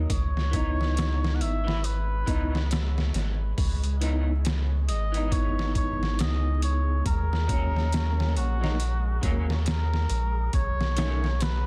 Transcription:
0.09 C#2 G#3 G#4 C#5, kick, closed hi-hat
0.37 snare
0.51 E3 B3, kick, closed hi-hat
0.56 D#4
0.81 snare
0.97 snare, closed hi-hat
1.24 snare
1.35 F#5
1.40 G#1 E5, closed hi-hat
1.65 E3 B3 E4, snare
1.84 B4, closed hi-hat
2.26 C#2 E3 B3 D#4, kick, closed hi-hat
2.55 snare
2.71 snare, closed hi-hat
2.98 snare
3.14 G#1, snare, closed hi-hat
3.58 C#2, kick, open hi-hat
3.84 closed hi-hat
4.01 E3 B3 D#4, closed hi-hat
4.45 snare, closed hi-hat
4.88 G#1 D#5, closed hi-hat
5.12 E3 B3, closed hi-hat
5.17 D#4
5.32 C#5, kick, closed hi-hat
5.59 snare
5.75 C#5, kick, closed hi-hat
6.03 snare
6.18 C#2 D#5, snare, closed hi-hat
6.62 C#5, closed hi-hat
7.06 D#2 A#4, kick, closed hi-hat
7.33 snare
7.48 F#3 A#3, kick, closed hi-hat
7.52 C#4
7.76 snare
7.93 snare, closed hi-hat
8.20 snare
8.36 A#1 F#4, closed hi-hat
8.61 F#3 A#3 D#4, snare
8.80 closed hi-hat
9.23 D#2 F#3 A#3 C#4, kick, closed hi-hat
9.50 snare
9.66 A#4, snare, closed hi-hat
9.94 snare
10.10 A#1, closed hi-hat
10.53 B1 C#5, kick, closed hi-hat
10.81 snare
10.96 D#3 A3 C#4, snare, closed hi-hat
11.24 snare
11.41 B4, snare, closed hi-hat

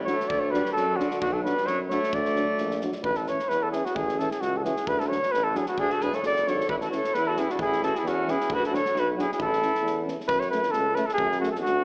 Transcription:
0.05 F#3 A3 D4 C#5, snare
0.20 snare
0.28 D2 A3 D5, kick
0.40 A3 C#5
0.51 F#3 G3 D4 B4, snare
0.65 snare
0.73 F#2 F#3 A4, snare
0.96 D3 F#3 D4 F#4, snare
1.11 snare
1.19 B1 D3 F#4, kick
1.32 F#3 A4
1.44 F#3 G3 D4 B4, snare
1.57 snare
1.65 F#2 F#3 C#5, snare
1.89 F#3 A3 D4 C#5, snare
2.03 snare
2.13 D2 A3 D5, kick
2.25 snare
2.36 F#3 D4, snare
2.58 A#1, snare
2.71 snare
2.81 F#3 D4, snare
2.92 snare
3.03 A1 B4, kick
3.15 A4, snare
3.27 E3 C#4 C#5, snare
3.39 snare
3.49 E2 B4, snare
3.63 A4
3.71 E3 C#4 G#4, snare
3.85 F#4, snare
3.95 A1 G#4, kick
4.09 snare
4.19 E3 C#4 A4, snare
4.31 G#4, snare
4.41 C#2 F#4, snare
4.57 A4
4.63 E3 C#4 G#4, snare
4.76 snare
4.87 D2 B4, kick
5.00 A4, snare
5.09 F#3 D4 C#5, snare
5.23 snare
5.32 A1 B4, snare
5.44 A4
5.54 F#3 D4 G#4, snare
5.66 F#4, snare
5.78 D2 D4 G#4, kick
5.90 F#4 A4, snare
6.00 E1 F#3 D4 G#4 B4, snare
6.13 A4 C#5, snare
6.23 F#1 A4 D5, snare
6.36 snare
6.46 G#1 F#3 D4 A4 C#5, snare
6.61 snare
6.68 A1 E4 B4, kick
6.81 F#4 A4, snare
6.91 E3 C#4 C#5, snare
6.96 A4
7.04 snare
7.13 E2 B4, snare
7.18 E4
7.28 F#4 A4
7.37 E3 C#4 E4 G#4, snare
7.50 D4 F#4, snare
7.59 A1 G#4, kick
7.64 E4
7.72 snare
7.81 E3 C#4 F#4 A4, snare
7.95 E4 G#4, snare
8.04 E2 F#4, snare
8.08 C#4
8.26 E3 C#4, snare
8.30 E4 G#4
8.41 snare
8.49 D2, kick
8.54 F#4 B4
8.64 F#4 A4, snare
8.70 F#3 D4
8.74 A4 C#5, snare
8.85 snare
8.94 B1 F#4, snare
8.99 B4
9.15 F#3 D4, snare
9.20 E4 G#4
9.32 E4 G#4, snare
9.39 A1 A4, kick
9.44 E4
9.53 snare
9.60 E3 C#4, snare
9.75 snare
9.82 E2
9.87 snare
10.05 E3 C#4, snare
10.20 snare
10.28 F#2 B4, kick
10.40 C#5, snare
10.51 A3 C#4 B4, snare
10.63 snare
10.71 C#2 A4, snare
10.95 A3 C#4 B4, snare
11.06 A4, snare
11.14 G#4
11.18 F#2, kick
11.32 snare
11.39 A3 C#4 F#4
11.43 snare
11.52 A4, snare
11.62 D2 F#4, snare

